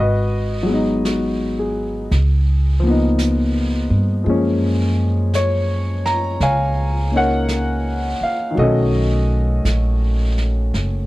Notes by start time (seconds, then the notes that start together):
Already playing: G#1
0.00 F#4 B4 D#5
0.63 F#3 G#3
0.69 B3
0.74 D#4
1.05 F#4, brush sweep, snare, hi-hat pedal
1.59 G#4
2.11 C#2, brush sweep, snare
2.80 F3 A#3
2.87 B3 D#4
3.19 brush sweep, snare, hi-hat pedal
3.90 G2
4.24 F#2 F3 G#3 A#3, brush sweep
4.30 C#4
5.34 C#5, brush sweep, snare, hi-hat pedal
6.05 A#5, snare
6.40 C#2 C#5 F5 G#5, brush sweep, snare
7.12 A#3 C#4 D#4
7.16 A#4 C#5 F#5
7.48 brush sweep, snare, hi-hat pedal
8.21 F5, muted upright bass stroke
8.51 D#3
8.55 B1 F#3 A3 F#4 A4, brush sweep
8.59 C#4 D#5
9.65 A#1, brush sweep, snare, hi-hat pedal
10.38 snare
10.74 F#1, brush sweep, snare